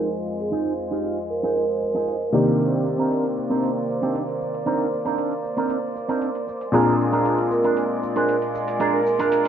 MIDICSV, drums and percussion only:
0, 0, Header, 1, 2, 480
1, 0, Start_track
1, 0, Tempo, 517241
1, 488, Time_signature, 4, 2, 24, 8
1, 8799, End_track
2, 0, Start_track
2, 0, Title_t, "Drums"
2, 8, Note_on_c, 9, 42, 59
2, 100, Note_off_c, 9, 42, 0
2, 131, Note_on_c, 9, 42, 34
2, 224, Note_off_c, 9, 42, 0
2, 252, Note_on_c, 9, 69, 68
2, 345, Note_off_c, 9, 69, 0
2, 371, Note_on_c, 9, 42, 47
2, 375, Note_on_c, 9, 69, 38
2, 464, Note_off_c, 9, 42, 0
2, 468, Note_off_c, 9, 69, 0
2, 488, Note_on_c, 9, 42, 57
2, 581, Note_off_c, 9, 42, 0
2, 733, Note_on_c, 9, 69, 66
2, 825, Note_off_c, 9, 69, 0
2, 853, Note_on_c, 9, 42, 46
2, 857, Note_on_c, 9, 69, 37
2, 946, Note_off_c, 9, 42, 0
2, 950, Note_off_c, 9, 69, 0
2, 969, Note_on_c, 9, 42, 57
2, 973, Note_on_c, 9, 69, 27
2, 1062, Note_off_c, 9, 42, 0
2, 1066, Note_off_c, 9, 69, 0
2, 1093, Note_on_c, 9, 42, 33
2, 1186, Note_off_c, 9, 42, 0
2, 1212, Note_on_c, 9, 69, 63
2, 1305, Note_off_c, 9, 69, 0
2, 1333, Note_on_c, 9, 42, 46
2, 1338, Note_on_c, 9, 69, 37
2, 1426, Note_off_c, 9, 42, 0
2, 1430, Note_off_c, 9, 69, 0
2, 1450, Note_on_c, 9, 42, 55
2, 1454, Note_on_c, 9, 69, 28
2, 1543, Note_off_c, 9, 42, 0
2, 1547, Note_off_c, 9, 69, 0
2, 1694, Note_on_c, 9, 69, 67
2, 1786, Note_off_c, 9, 69, 0
2, 1813, Note_on_c, 9, 42, 47
2, 1817, Note_on_c, 9, 69, 38
2, 1905, Note_off_c, 9, 42, 0
2, 1910, Note_off_c, 9, 69, 0
2, 1930, Note_on_c, 9, 42, 60
2, 2022, Note_off_c, 9, 42, 0
2, 2052, Note_on_c, 9, 42, 32
2, 2145, Note_off_c, 9, 42, 0
2, 2172, Note_on_c, 9, 69, 67
2, 2265, Note_off_c, 9, 69, 0
2, 2293, Note_on_c, 9, 42, 46
2, 2297, Note_on_c, 9, 69, 37
2, 2386, Note_off_c, 9, 42, 0
2, 2390, Note_off_c, 9, 69, 0
2, 2409, Note_on_c, 9, 42, 54
2, 2413, Note_on_c, 9, 69, 27
2, 2502, Note_off_c, 9, 42, 0
2, 2506, Note_off_c, 9, 69, 0
2, 2653, Note_on_c, 9, 69, 66
2, 2746, Note_off_c, 9, 69, 0
2, 2774, Note_on_c, 9, 42, 44
2, 2779, Note_on_c, 9, 69, 37
2, 2867, Note_off_c, 9, 42, 0
2, 2872, Note_off_c, 9, 69, 0
2, 2890, Note_on_c, 9, 42, 56
2, 2895, Note_on_c, 9, 69, 28
2, 2983, Note_off_c, 9, 42, 0
2, 2987, Note_off_c, 9, 69, 0
2, 3014, Note_on_c, 9, 42, 30
2, 3107, Note_off_c, 9, 42, 0
2, 3134, Note_on_c, 9, 69, 63
2, 3227, Note_off_c, 9, 69, 0
2, 3255, Note_on_c, 9, 42, 44
2, 3259, Note_on_c, 9, 69, 36
2, 3348, Note_off_c, 9, 42, 0
2, 3352, Note_off_c, 9, 69, 0
2, 3371, Note_on_c, 9, 42, 57
2, 3376, Note_on_c, 9, 69, 27
2, 3464, Note_off_c, 9, 42, 0
2, 3468, Note_off_c, 9, 69, 0
2, 3615, Note_on_c, 9, 69, 66
2, 3708, Note_off_c, 9, 69, 0
2, 3735, Note_on_c, 9, 42, 45
2, 3739, Note_on_c, 9, 69, 38
2, 3827, Note_off_c, 9, 42, 0
2, 3832, Note_off_c, 9, 69, 0
2, 3853, Note_on_c, 9, 42, 57
2, 3857, Note_on_c, 9, 69, 28
2, 3945, Note_off_c, 9, 42, 0
2, 3950, Note_off_c, 9, 69, 0
2, 3976, Note_on_c, 9, 42, 31
2, 4069, Note_off_c, 9, 42, 0
2, 4094, Note_on_c, 9, 69, 67
2, 4186, Note_off_c, 9, 69, 0
2, 4215, Note_on_c, 9, 42, 45
2, 4219, Note_on_c, 9, 69, 38
2, 4308, Note_off_c, 9, 42, 0
2, 4312, Note_off_c, 9, 69, 0
2, 4329, Note_on_c, 9, 42, 54
2, 4333, Note_on_c, 9, 69, 28
2, 4422, Note_off_c, 9, 42, 0
2, 4426, Note_off_c, 9, 69, 0
2, 4453, Note_on_c, 9, 42, 31
2, 4546, Note_off_c, 9, 42, 0
2, 4573, Note_on_c, 9, 69, 67
2, 4666, Note_off_c, 9, 69, 0
2, 4692, Note_on_c, 9, 42, 44
2, 4696, Note_on_c, 9, 69, 38
2, 4785, Note_off_c, 9, 42, 0
2, 4789, Note_off_c, 9, 69, 0
2, 4809, Note_on_c, 9, 42, 54
2, 4813, Note_on_c, 9, 69, 28
2, 4901, Note_off_c, 9, 42, 0
2, 4906, Note_off_c, 9, 69, 0
2, 4933, Note_on_c, 9, 42, 30
2, 5025, Note_off_c, 9, 42, 0
2, 5051, Note_on_c, 9, 69, 64
2, 5144, Note_off_c, 9, 69, 0
2, 5171, Note_on_c, 9, 42, 44
2, 5175, Note_on_c, 9, 69, 37
2, 5264, Note_off_c, 9, 42, 0
2, 5268, Note_off_c, 9, 69, 0
2, 5288, Note_on_c, 9, 42, 55
2, 5293, Note_on_c, 9, 69, 28
2, 5381, Note_off_c, 9, 42, 0
2, 5386, Note_off_c, 9, 69, 0
2, 5532, Note_on_c, 9, 69, 65
2, 5624, Note_off_c, 9, 69, 0
2, 5652, Note_on_c, 9, 42, 45
2, 5656, Note_on_c, 9, 69, 38
2, 5745, Note_off_c, 9, 42, 0
2, 5749, Note_off_c, 9, 69, 0
2, 5768, Note_on_c, 9, 42, 56
2, 5772, Note_on_c, 9, 69, 28
2, 5861, Note_off_c, 9, 42, 0
2, 5865, Note_off_c, 9, 69, 0
2, 5893, Note_on_c, 9, 42, 30
2, 5986, Note_off_c, 9, 42, 0
2, 6015, Note_on_c, 9, 69, 69
2, 6107, Note_off_c, 9, 69, 0
2, 6136, Note_on_c, 9, 42, 44
2, 6140, Note_on_c, 9, 69, 39
2, 6229, Note_off_c, 9, 42, 0
2, 6233, Note_off_c, 9, 69, 0
2, 6251, Note_on_c, 9, 42, 54
2, 6255, Note_on_c, 9, 69, 29
2, 6344, Note_off_c, 9, 42, 0
2, 6348, Note_off_c, 9, 69, 0
2, 6495, Note_on_c, 9, 69, 69
2, 6588, Note_off_c, 9, 69, 0
2, 6616, Note_on_c, 9, 42, 44
2, 6620, Note_on_c, 9, 69, 41
2, 6709, Note_off_c, 9, 42, 0
2, 6713, Note_off_c, 9, 69, 0
2, 6731, Note_on_c, 9, 42, 56
2, 6736, Note_on_c, 9, 69, 29
2, 6824, Note_off_c, 9, 42, 0
2, 6829, Note_off_c, 9, 69, 0
2, 6853, Note_on_c, 9, 42, 31
2, 6946, Note_off_c, 9, 42, 0
2, 6972, Note_on_c, 9, 69, 69
2, 7065, Note_off_c, 9, 69, 0
2, 7093, Note_on_c, 9, 42, 44
2, 7097, Note_on_c, 9, 69, 40
2, 7186, Note_off_c, 9, 42, 0
2, 7190, Note_off_c, 9, 69, 0
2, 7209, Note_on_c, 9, 42, 55
2, 7213, Note_on_c, 9, 69, 29
2, 7301, Note_off_c, 9, 42, 0
2, 7306, Note_off_c, 9, 69, 0
2, 7452, Note_on_c, 9, 69, 70
2, 7544, Note_off_c, 9, 69, 0
2, 7572, Note_on_c, 9, 42, 46
2, 7577, Note_on_c, 9, 69, 40
2, 7665, Note_off_c, 9, 42, 0
2, 7669, Note_off_c, 9, 69, 0
2, 7690, Note_on_c, 9, 42, 56
2, 7695, Note_on_c, 9, 69, 31
2, 7783, Note_off_c, 9, 42, 0
2, 7787, Note_off_c, 9, 69, 0
2, 7814, Note_on_c, 9, 42, 31
2, 7907, Note_off_c, 9, 42, 0
2, 7934, Note_on_c, 9, 69, 73
2, 8027, Note_off_c, 9, 69, 0
2, 8054, Note_on_c, 9, 42, 46
2, 8058, Note_on_c, 9, 69, 41
2, 8147, Note_off_c, 9, 42, 0
2, 8151, Note_off_c, 9, 69, 0
2, 8168, Note_on_c, 9, 42, 57
2, 8172, Note_on_c, 9, 69, 30
2, 8260, Note_off_c, 9, 42, 0
2, 8265, Note_off_c, 9, 69, 0
2, 8413, Note_on_c, 9, 69, 71
2, 8505, Note_off_c, 9, 69, 0
2, 8533, Note_on_c, 9, 42, 47
2, 8537, Note_on_c, 9, 69, 40
2, 8626, Note_off_c, 9, 42, 0
2, 8630, Note_off_c, 9, 69, 0
2, 8648, Note_on_c, 9, 42, 56
2, 8652, Note_on_c, 9, 69, 29
2, 8741, Note_off_c, 9, 42, 0
2, 8745, Note_off_c, 9, 69, 0
2, 8799, End_track
0, 0, End_of_file